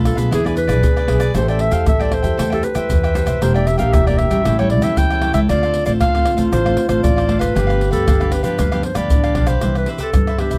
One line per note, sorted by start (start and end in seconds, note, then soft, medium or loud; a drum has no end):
0.00 0.13 B1 medium
0.00 0.29 B2 medium
0.00 0.15 A3 medium
0.00 0.15 D4 medium
0.00 0.15 F4 medium
0.00 0.32 F4 medium
0.00 0.16 A4 medium
0.00 0.16 B4 medium
0.00 0.14 F5 medium
0.05 0.18 A4 medium
0.05 pandeiro medium
0.05 tamborim medium
0.05 shaker medium
0.15 0.28 B1 medium
0.15 0.39 B3 medium
0.15 0.40 D4 medium
0.15 0.40 G#4 medium
0.15 0.30 A4 medium
0.15 0.30 B4 medium
0.15 0.29 F5 medium
0.15 pandeiro medium
0.15 shaker medium
0.15 surdo soft
0.31 0.70 E2 medium
0.31 0.81 E3 medium
0.31 0.43 E4 soft
0.31 0.85 E4 medium
0.31 0.43 G#4 soft
0.31 0.45 G#4 medium
0.31 0.44 B4 soft
0.31 0.43 D5 soft
0.31 pandeiro medium
0.31 tamborim medium
0.31 shaker medium
0.31 surdo medium
0.44 0.66 B3 medium
0.44 0.67 D4 medium
0.44 0.67 G#4 medium
0.44 0.55 G#4 medium
0.44 0.55 B4 medium
0.44 0.55 D5 medium
0.44 pandeiro soft
0.44 tamborim medium
0.44 shaker soft
0.44 surdo soft
0.56 1.31 B4 medium
0.56 muted cavaquinho stroke soft
0.56 pandeiro medium
0.56 shaker medium
0.67 0.80 B1 medium
0.67 1.04 B3 medium
0.67 1.04 D4 medium
0.67 1.04 G#4 medium
0.67 0.95 G#4 medium
0.67 0.94 B4 medium
0.67 0.94 D5 medium
0.67 pandeiro medium
0.67 tamborim medium
0.67 shaker medium
0.83 1.07 D2 medium
0.83 1.32 B2 soft
0.83 1.34 G#4 medium
0.83 pandeiro medium
0.83 shaker medium
0.83 surdo loud
0.96 1.08 G#4 soft
0.96 1.08 B4 medium
0.96 1.08 D5 medium
0.96 pandeiro soft
0.96 tamborim medium
0.96 shaker soft
1.07 1.32 B1 medium
1.07 1.23 B3 medium
1.07 1.24 D4 medium
1.07 1.20 E4 soft
1.07 1.24 G#4 medium
1.07 1.21 G#4 soft
1.07 1.20 B4 soft
1.07 1.19 D5 medium
1.07 pandeiro medium
1.07 tamborim medium
1.20 1.34 G#4 medium
1.20 1.34 B4 medium
1.20 1.33 D5 medium
1.20 pandeiro medium
1.20 tamborim medium
1.20 shaker medium
1.20 surdo soft
1.34 1.68 A1 loud
1.34 1.84 A3 medium
1.34 1.70 E4 medium
1.34 1.70 G4 medium
1.34 1.47 A4 soft
1.34 3.11 A4 loud
1.34 1.70 C5 medium
1.34 1.47 C5 soft
1.34 1.48 C5 medium
1.34 1.48 E5 soft
1.34 1.47 G5 medium
1.34 pandeiro medium
1.34 tamborim medium
1.34 shaker medium
1.34 surdo medium
1.48 1.72 C5 medium
1.48 1.62 D5 medium
1.48 1.71 E5 medium
1.48 1.70 G5 medium
1.48 pandeiro soft
1.48 tamborim medium
1.48 shaker soft
1.59 1.75 E5 medium
1.59 pandeiro medium
1.71 1.84 E2 medium
1.71 1.94 E4 medium
1.71 1.95 G4 medium
1.71 1.95 C5 medium
1.71 1.86 C5 medium
1.71 1.85 E5 medium
1.71 1.87 F5 medium
1.71 1.85 G5 medium
1.71 pandeiro medium
1.71 shaker medium
1.71 surdo soft
1.86 2.20 A1 medium
1.86 2.36 E3 medium
1.86 1.99 A4 soft
1.86 1.99 C5 soft
1.86 1.99 E5 soft
1.86 2.03 E5 loud
1.86 1.98 G5 soft
1.86 pandeiro medium
1.86 tamborim medium
1.86 shaker medium
1.86 surdo loud
1.99 2.22 E4 medium
1.99 2.22 G4 medium
1.99 2.22 C5 medium
1.99 2.23 C5 soft
1.99 2.15 D5 medium
1.99 2.23 E5 medium
1.99 2.21 G5 medium
1.99 pandeiro soft
1.99 tamborim medium
1.99 shaker soft
2.12 2.52 C5 medium
2.12 pandeiro medium
2.12 tamborim medium
2.22 2.35 E2 medium
2.22 2.46 E4 medium
2.22 2.47 G4 medium
2.22 2.47 C5 medium
2.22 2.37 C5 medium
2.22 2.37 E5 medium
2.22 2.36 G5 medium
2.22 pandeiro medium
2.22 shaker medium
2.22 surdo soft
2.37 2.60 E2 medium
2.37 2.88 A3 medium
2.37 2.50 A4 soft
2.37 2.50 C5 soft
2.37 2.51 E5 medium
2.37 2.49 G5 medium
2.37 pandeiro medium
2.37 tamborim medium
2.37 shaker medium
2.37 surdo medium
2.50 2.74 E4 medium
2.50 2.74 G4 medium
2.50 2.66 A4 medium
2.50 2.62 C5 medium
2.50 2.74 C5 medium
2.50 2.62 E5 medium
2.50 2.62 G5 medium
2.50 pandeiro soft
2.50 tamborim medium
2.50 shaker soft
2.50 surdo soft
2.62 3.44 B4 medium
2.62 muted cavaquinho stroke soft
2.62 pandeiro medium
2.62 shaker medium
2.75 2.87 E2 medium
2.75 3.11 E4 medium
2.75 3.11 G4 medium
2.75 3.02 C5 medium
2.75 3.02 E5 medium
2.75 3.01 G5 medium
2.75 pandeiro medium
2.75 tamborim medium
2.75 shaker medium
2.90 3.23 E2 medium
2.90 3.40 E3 medium
2.90 pandeiro medium
2.90 shaker medium
2.90 surdo medium
3.03 3.14 C5 medium
3.03 3.14 E5 medium
3.03 3.15 G5 medium
3.03 pandeiro soft
3.03 tamborim medium
3.03 shaker soft
3.14 3.37 E4 medium
3.14 3.37 G4 medium
3.14 3.27 A4 soft
3.14 3.27 C5 soft
3.14 3.38 C5 medium
3.14 3.26 E5 soft
3.14 3.25 G5 medium
3.14 pandeiro medium
3.14 tamborim medium
3.14 shaker medium
3.14 surdo soft
3.26 3.39 F1 medium
3.26 3.41 C5 medium
3.26 3.40 E5 medium
3.26 3.40 G5 medium
3.26 pandeiro medium
3.26 tamborim medium
3.26 shaker medium
3.26 surdo soft
3.41 3.75 E1 medium
3.41 3.91 E3 medium
3.41 3.66 A#3 soft
3.41 3.54 D4 soft
3.41 3.67 D4 medium
3.41 4.47 G4 loud
3.41 3.67 G4 medium
3.41 3.54 A#4 soft
3.41 3.55 C5 medium
3.41 3.54 E5 soft
3.41 3.53 G5 medium
3.41 pandeiro medium
3.41 tamborim medium
3.41 shaker medium
3.41 surdo medium
3.54 3.79 A#4 medium
3.54 3.68 D5 medium
3.54 3.78 E5 medium
3.54 3.77 G5 medium
3.54 pandeiro soft
3.54 tamborim medium
3.54 shaker soft
3.67 3.78 E5 medium
3.67 pandeiro medium
3.67 shaker medium
3.78 3.91 A#1 medium
3.78 4.02 A#3 medium
3.78 4.02 D4 medium
3.78 4.02 G4 medium
3.78 3.93 A#4 soft
3.78 3.92 E5 medium
3.78 3.95 F5 medium
3.78 3.91 G5 medium
3.78 pandeiro medium
3.78 shaker medium
3.78 surdo soft
3.93 4.27 E1 medium
3.93 4.43 E3 medium
3.93 4.05 D4 soft
3.93 4.06 A#4 medium
3.93 4.07 E5 loud
3.93 4.06 E5 soft
3.93 4.05 G5 medium
3.93 pandeiro medium
3.93 tamborim medium
3.93 shaker medium
3.93 surdo loud
4.07 4.29 A#3 medium
4.07 4.30 D4 medium
4.07 4.30 G4 medium
4.07 4.31 A#4 medium
4.07 4.19 D5 medium
4.07 4.31 E5 medium
4.07 4.29 G5 medium
4.07 pandeiro soft
4.07 tamborim medium
4.07 shaker soft
4.18 4.58 E5 medium
4.18 pandeiro medium
4.18 tamborim medium
4.30 4.43 G#1 medium
4.30 4.54 G3 medium
4.30 4.54 C#4 medium
4.30 4.54 E4 medium
4.30 4.44 A#4 medium
4.30 4.44 E5 medium
4.30 4.44 G5 medium
4.30 pandeiro medium
4.30 shaker medium
4.30 surdo soft
4.45 4.83 A1 loud
4.45 4.95 A2 medium
4.45 5.49 E4 medium
4.45 4.58 G4 soft
4.45 4.58 A4 soft
4.45 4.58 C#5 soft
4.45 4.58 G5 soft
4.45 pandeiro medium
4.45 tamborim medium
4.45 shaker medium
4.45 surdo medium
4.59 4.81 G3 medium
4.59 4.82 C#4 medium
4.59 4.82 E4 medium
4.59 4.70 A4 medium
4.59 4.70 C#5 medium
4.59 4.70 G5 medium
4.59 pandeiro soft
4.59 tamborim medium
4.59 shaker soft
4.59 surdo soft
4.70 4.85 D5 medium
4.70 muted cavaquinho stroke soft
4.70 pandeiro medium
4.82 4.94 E2 medium
4.82 5.19 G3 medium
4.82 5.19 C#4 medium
4.82 5.19 E4 medium
4.82 5.09 A4 medium
4.82 5.09 C#5 medium
4.82 4.99 E5 medium
4.82 5.08 G5 medium
4.82 pandeiro medium
4.82 tamborim medium
4.82 shaker medium
4.97 5.31 E2 medium
4.97 5.47 E3 medium
4.97 5.34 G5 loud
4.97 pandeiro medium
4.97 shaker medium
4.97 surdo medium
5.10 5.22 A4 medium
5.10 5.22 C#5 medium
5.10 5.23 G5 medium
5.10 pandeiro soft
5.10 tamborim medium
5.10 shaker soft
5.22 5.38 G3 medium
5.22 5.38 C#4 medium
5.22 5.39 E4 medium
5.22 5.35 G4 soft
5.22 5.35 A4 soft
5.22 5.34 C#5 soft
5.22 5.33 G5 medium
5.22 pandeiro medium
5.22 tamborim medium
5.34 5.46 C#2 medium
5.34 5.48 A4 medium
5.34 5.48 C#5 medium
5.34 5.40 E5 medium
5.34 5.47 G5 medium
5.34 pandeiro medium
5.34 tamborim medium
5.34 shaker medium
5.34 surdo soft
5.49 5.82 D2 loud
5.49 5.98 D3 medium
5.49 5.84 A3 medium
5.49 5.84 C4 medium
5.49 5.61 D4 soft
5.49 7.57 F4 loud
5.49 5.84 F4 medium
5.49 5.62 A4 soft
5.49 5.62 C5 medium
5.49 5.85 D5 loud
5.49 5.62 F5 soft
5.49 pandeiro medium
5.49 tamborim medium
5.49 shaker medium
5.49 surdo medium
5.63 5.87 A4 medium
5.63 5.86 C5 medium
5.63 5.84 F5 medium
5.63 pandeiro soft
5.63 tamborim medium
5.63 shaker soft
5.74 pandeiro medium
5.86 5.98 A1 medium
5.86 6.09 A3 medium
5.86 6.09 C4 medium
5.86 6.09 F4 medium
5.86 6.00 A4 medium
5.86 6.00 C5 medium
5.86 5.93 D5 medium
5.86 5.99 F5 medium
5.86 pandeiro medium
5.86 shaker medium
5.86 surdo soft
6.01 6.34 D2 medium
6.01 6.50 A2 medium
6.01 6.13 D4 soft
6.01 6.13 A4 soft
6.01 6.14 C5 medium
6.01 6.37 F5 loud
6.01 6.13 F5 medium
6.01 pandeiro medium
6.01 tamborim medium
6.01 shaker medium
6.01 surdo medium
6.15 6.36 A3 medium
6.15 6.36 C4 medium
6.15 6.36 F4 medium
6.15 6.38 A4 soft
6.15 6.37 C5 medium
6.15 6.36 F5 medium
6.15 pandeiro soft
6.15 tamborim medium
6.15 shaker soft
6.25 pandeiro medium
6.25 tamborim medium
6.37 6.50 A1 medium
6.37 6.61 A3 medium
6.37 6.61 C4 medium
6.37 6.61 F4 medium
6.37 6.51 A4 medium
6.37 6.51 C5 medium
6.37 6.50 F5 medium
6.37 pandeiro medium
6.37 shaker medium
6.37 surdo soft
6.52 6.74 A1 loud
6.52 7.02 D3 medium
6.52 6.64 D4 soft
6.52 6.64 A4 soft
6.52 6.88 C5 medium
6.52 6.65 C5 soft
6.52 6.64 F5 soft
6.52 pandeiro medium
6.52 tamborim medium
6.52 shaker medium
6.52 surdo medium
6.66 6.88 A3 medium
6.66 6.88 C4 medium
6.66 6.88 F4 medium
6.66 6.76 A4 medium
6.66 6.76 C5 medium
6.66 6.77 F5 medium
6.66 pandeiro soft
6.66 tamborim medium
6.66 shaker soft
6.66 surdo soft
6.77 muted cavaquinho stroke soft
6.77 pandeiro medium
6.88 7.01 A1 medium
6.88 7.25 A3 medium
6.88 7.25 C4 medium
6.88 7.25 F4 medium
6.88 7.16 A4 medium
6.88 7.02 C5 medium
6.88 7.15 C5 medium
6.88 7.15 F5 medium
6.88 pandeiro medium
6.88 tamborim medium
6.88 shaker medium
7.03 7.37 A1 loud
7.03 7.40 D5 medium
7.03 pandeiro medium
7.03 shaker medium
7.03 surdo medium
7.16 7.27 A4 medium
7.16 7.28 C5 medium
7.16 7.29 F5 medium
7.16 pandeiro soft
7.16 tamborim medium
7.16 shaker soft
7.28 7.45 A3 medium
7.28 7.45 C4 medium
7.28 7.41 D4 soft
7.28 7.45 F4 medium
7.28 7.40 A4 medium
7.28 7.39 C5 medium
7.28 7.38 F5 medium
7.28 pandeiro medium
7.28 tamborim medium
7.28 surdo soft
7.39 7.53 G#1 medium
7.39 7.54 A4 soft
7.39 7.90 B4 medium
7.39 7.54 C5 medium
7.39 7.53 F5 medium
7.39 pandeiro medium
7.39 tamborim medium
7.39 shaker medium
7.39 surdo soft
7.54 7.89 G1 loud
7.54 8.05 G2 medium
7.54 7.80 F3 medium
7.54 7.80 B3 soft
7.54 7.67 D4 soft
7.54 7.80 D4 medium
7.54 7.67 G4 medium
7.54 8.84 G4 medium
7.54 7.67 B4 medium
7.54 7.66 F5 medium
7.54 pandeiro medium
7.54 tamborim medium
7.54 shaker medium
7.54 surdo medium
7.67 7.91 G4 medium
7.67 7.91 B4 medium
7.67 7.90 F5 medium
7.67 pandeiro soft
7.67 tamborim medium
7.67 shaker soft
7.81 pandeiro medium
7.91 8.05 D2 medium
7.91 8.15 F3 medium
7.91 8.15 B3 medium
7.91 8.16 D4 medium
7.91 8.05 G4 medium
7.91 8.34 A4 medium
7.91 8.05 B4 medium
7.91 8.05 F5 medium
7.91 pandeiro medium
7.91 shaker medium
7.91 surdo soft
8.06 8.41 G1 medium
8.06 8.57 D3 medium
8.06 8.19 D4 soft
8.06 8.19 G4 soft
8.06 8.20 B4 soft
8.06 8.19 F5 soft
8.06 pandeiro medium
8.06 tamborim medium
8.06 shaker medium
8.06 surdo loud
8.20 8.43 F3 medium
8.20 8.43 B3 medium
8.20 8.43 D4 medium
8.20 8.44 G4 soft
8.20 8.43 B4 medium
8.20 8.42 F5 medium
8.20 pandeiro soft
8.20 tamborim medium
8.20 shaker soft
8.32 8.43 B4 medium
8.32 pandeiro medium
8.32 tamborim medium
8.32 shaker medium
8.43 8.56 D2 medium
8.43 8.67 F3 medium
8.43 8.67 B3 medium
8.43 8.67 D4 medium
8.43 8.58 G4 medium
8.43 8.81 B4 medium
8.43 8.57 B4 medium
8.43 8.57 F5 medium
8.43 pandeiro medium
8.43 shaker medium
8.43 surdo soft
8.58 8.81 D2 loud
8.58 9.08 G2 medium
8.58 8.71 D4 soft
8.58 8.71 G4 soft
8.58 8.71 B4 medium
8.58 8.70 F5 medium
8.58 pandeiro medium
8.58 tamborim medium
8.58 shaker medium
8.58 surdo medium
8.72 8.94 F3 medium
8.72 8.94 B3 medium
8.72 8.95 D4 medium
8.72 8.82 G4 medium
8.72 8.82 B4 medium
8.72 8.83 F5 medium
8.72 pandeiro soft
8.72 tamborim medium
8.72 shaker soft
8.72 surdo soft
8.83 8.98 C5 medium
8.83 muted cavaquinho stroke soft
8.83 pandeiro medium
8.95 9.08 D2 medium
8.95 9.31 F3 medium
8.95 9.32 B3 soft
8.95 9.32 D4 medium
8.95 9.22 G4 medium
8.95 9.22 B4 medium
8.95 9.49 D5 medium
8.95 9.21 F5 medium
8.95 pandeiro medium
8.95 tamborim medium
8.95 shaker medium
9.10 9.34 A1 medium
9.10 9.60 D3 soft
9.10 9.59 D4 medium
9.10 pandeiro medium
9.10 shaker medium
9.10 surdo loud
9.24 9.36 G4 soft
9.24 9.36 B4 medium
9.24 9.36 F5 medium
9.24 pandeiro soft
9.24 tamborim medium
9.24 shaker soft
9.35 9.59 B1 medium
9.35 9.51 F3 medium
9.35 9.52 B3 soft
9.35 9.48 D4 soft
9.35 9.52 D4 medium
9.35 9.48 G4 soft
9.35 9.47 B4 medium
9.35 9.45 F5 medium
9.35 pandeiro medium
9.35 tamborim medium
9.35 surdo soft
9.47 9.60 G4 medium
9.47 9.61 B4 medium
9.47 9.75 C5 medium
9.47 9.60 F5 medium
9.47 pandeiro medium
9.47 tamborim medium
9.47 shaker medium
9.47 surdo soft
9.61 9.85 C2 medium
9.61 10.12 C3 soft
9.61 9.96 E3 medium
9.61 9.96 B3 soft
9.61 9.96 D4 medium
9.61 9.86 G4 medium
9.61 9.88 B4 medium
9.61 9.87 C5 medium
9.61 9.88 E5 medium
9.61 pandeiro medium
9.61 tamborim medium
9.61 shaker medium
9.61 surdo medium
9.75 9.89 B4 medium
9.75 pandeiro soft
9.75 tamborim medium
9.75 shaker soft
9.86 9.98 G4 soft
9.86 9.99 B4 medium
9.86 9.99 C5 soft
9.86 10.00 E5 medium
9.86 pandeiro medium
9.98 10.09 G4 medium
9.98 10.41 A4 medium
9.98 10.10 B4 medium
9.98 10.10 C5 medium
9.98 10.10 E5 medium
9.98 pandeiro medium
9.98 shaker medium
9.98 surdo soft
10.13 10.36 G2 medium
10.13 10.58 G2 medium
10.13 10.30 E3 medium
10.13 10.30 B3 medium
10.13 10.30 D4 medium
10.13 pandeiro medium
10.13 tamborim medium
10.13 shaker medium
10.13 surdo loud
10.27 10.39 B4 soft
10.27 10.38 C5 soft
10.27 10.39 E5 soft
10.27 pandeiro soft
10.27 tamborim medium
10.27 shaker soft
10.38 10.58 E3 medium
10.38 10.58 B3 medium
10.38 10.58 D4 medium
10.38 10.51 G4 soft
10.38 10.58 G4 medium
10.38 10.51 B4 medium
10.38 10.52 C5 soft
10.38 10.49 E5 medium
10.38 pandeiro medium
10.38 tamborim medium
10.50 10.58 C2 medium
10.50 10.58 B4 soft
10.50 10.58 C5 soft
10.50 10.58 E5 soft
10.50 pandeiro medium
10.50 shaker medium
10.50 surdo soft